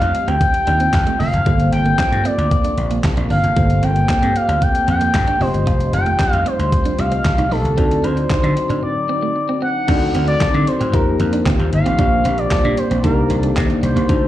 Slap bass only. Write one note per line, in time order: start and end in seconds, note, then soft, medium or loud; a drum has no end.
0.01 0.11 F2 medium
0.28 0.38 D2 medium
0.67 0.87 D#2 medium
0.93 1.04 F2 medium
1.20 1.30 F1 medium
1.33 1.43 F1 medium
1.46 1.66 G1 loud
1.72 1.93 G1 medium
2.12 2.22 G2 loud
2.38 2.48 D2 medium
2.77 2.98 A#1 medium
3.17 3.27 A#1 medium
3.30 3.40 G1 medium
3.43 3.54 F1 medium
3.57 3.77 G1 loud
3.83 4.03 G1 loud
4.22 4.32 G2 loud
4.48 4.59 D2 medium
4.88 5.08 F2 medium
5.14 5.24 G2 medium
5.41 5.51 F1 loud
5.54 5.64 G1 medium
5.67 5.87 F1 medium
5.93 6.14 F1 medium
6.19 muted slap bass stroke soft
6.33 6.43 F2 loud
6.59 6.69 D2 medium
6.99 7.19 C2 medium
7.38 7.48 C2 medium
7.51 7.61 A#1 medium
7.64 7.75 C2 medium
7.78 7.98 D2 loud
8.04 8.24 D2 loud
8.43 8.53 D3 loud
8.70 8.80 A2 medium
9.88 10.08 D2 loud
10.14 10.35 D2 loud
10.54 10.64 D3 loud
10.81 10.93 A2 medium
10.93 11.14 F2 loud
11.20 11.40 F2 medium
11.59 11.69 D#2 medium
11.73 11.83 G1 medium
11.86 11.96 A1 loud
11.99 12.19 A#1 loud
12.25 12.45 A#1 loud
12.51 muted slap bass stroke soft
12.64 12.75 A#2 loud
12.91 13.01 A#1 medium
13.04 13.24 C2 loud
13.30 13.50 C2 loud
13.56 13.67 C3 loud
13.83 13.93 C2 medium
13.96 14.06 C2 loud
14.09 14.28 D2 loud